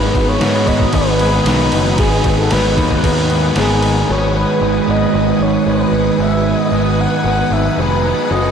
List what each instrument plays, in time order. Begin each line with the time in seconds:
Already playing: picked electric bass G#1, overdriven electric guitar G#2 D#3 G#3 B3 D#4 G#4 B4, clean electric guitar F#3, soft synth lead B4, string machine B4 F#5 D#6
0.13 picked electric bass G#1, clean electric guitar B3, kick, crash
0.29 soft synth lead C#5
0.39 picked electric bass G#2, clean electric guitar F#3, overdriven electric guitar G#3 B3 D#4 B4, snare, crash
0.65 overdriven electric guitar D#3 G#3 B3 D#4 G#4 B4, clean electric guitar D#4, soft synth lead D#5, kick, crash
0.70 overdriven electric guitar G#2
0.80 kick
0.93 picked electric bass G#1, overdriven electric guitar G#3 B3 D#4 B4, clean electric guitar B3, soft synth lead B4, kick, crash
1.19 overdriven electric guitar G#3 B3 D#4 B4, clean electric guitar G#4, crash
1.45 picked electric bass B1, overdriven electric guitar G#2 D#3 G#3 B3 D#4 G#4, clean electric guitar D#4, snare, crash
1.72 picked electric bass F#1, clean electric guitar F#3, overdriven electric guitar G#3 B3 D#4 B4, crash
1.98 picked electric bass G#1, overdriven electric guitar G#2 D#3 G#3 B3 D#4 B4, clean electric guitar F#3, soft synth lead G#4, kick, crash
2.02 overdriven electric guitar G#4
2.24 picked electric bass G#1, clean electric guitar B3, kick, crash
2.38 soft synth lead A4
2.50 picked electric bass G#1, clean electric guitar F#3, overdriven electric guitar G#3 B3 D#4 B4, soft synth lead B4, snare, crash
2.77 picked electric bass D#2, overdriven electric guitar G#3 B3 D#4 G#4 B4, clean electric guitar D#4, kick, crash
2.81 overdriven electric guitar G#2 D#3
2.90 kick, snare
3.03 picked electric bass D#2, overdriven electric guitar G#3 B3 D#4 B4, clean electric guitar B3, soft synth lead B4, kick, crash
3.29 overdriven electric guitar G#3 B3 D#4 B4, clean electric guitar G#4, crash
3.55 picked electric bass G#1, overdriven electric guitar G#2 D#3 G#3 B3, clean electric guitar D#4, soft synth lead G#4, snare, crash
3.60 overdriven electric guitar D#4 G#4
3.70 snare
3.82 clean electric guitar F#3, overdriven electric guitar G#3 B3 D#4 B4, crash
4.08 picked electric bass G#1, overdriven electric guitar G#2 D#3 G#3 B3 D#4 B4, clean electric guitar F#3, string machine B4 F#5 G#5 D#6, soft synth lead C#5
4.13 overdriven electric guitar G#4
4.34 overdriven electric guitar G#3 B3 D#4 B4, clean electric guitar B3, soft synth lead B4
4.60 picked electric bass G#1, overdriven electric guitar G#3 B3 D#4 B4, clean electric guitar G#4
4.86 picked electric bass G#1, overdriven electric guitar G#3 B3 D#4 B4, clean electric guitar D#4, soft synth lead D#5
5.12 picked electric bass G#1, overdriven electric guitar G#2 D#3 G#3 B3 D#4 B4, clean electric guitar B3
5.39 picked electric bass G#1, clean electric guitar F#3, overdriven electric guitar G#3 B3 D#4 B4, soft synth lead C#5
5.66 picked electric bass G#1, overdriven electric guitar G#3 B3 D#4 B4, clean electric guitar D#4, soft synth lead B4
5.91 picked electric bass G#1, overdriven electric guitar D#4 B4, clean electric guitar G#4
5.96 overdriven electric guitar G#3 B3
6.19 picked electric bass G#1, overdriven electric guitar G#2 D#3 G#3 B3 D#4 B4, clean electric guitar F#3, soft synth lead E5
6.45 overdriven electric guitar G#3 B3 D#4 B4, clean electric guitar B3, soft synth lead D#5
6.72 picked electric bass G#1, overdriven electric guitar G#3 B3 D#4 B4, clean electric guitar G#4
6.98 overdriven electric guitar G#3 B3 D#4 B4, clean electric guitar D#4, soft synth lead F#5
7.24 picked electric bass G#1, overdriven electric guitar G#2 D#3 G#3 B3 D#4 B4, clean electric guitar B3
7.51 picked electric bass G#1, clean electric guitar F#3, overdriven electric guitar G#3 B3 D#4 B4, soft synth lead E5
7.76 picked electric bass F1, overdriven electric guitar G#3 B3 D#4, clean electric guitar D#4
7.80 soft synth lead B4, overdriven electric guitar B4
8.04 overdriven electric guitar G#3 B3 D#4 B4, clean electric guitar G#4
8.29 picked electric bass F#1, overdriven electric guitar F#2 C#3 F#3 A3 C#4 F#4 A4, clean electric guitar F#3, string machine A3 F#5 C#6, soft synth lead D#5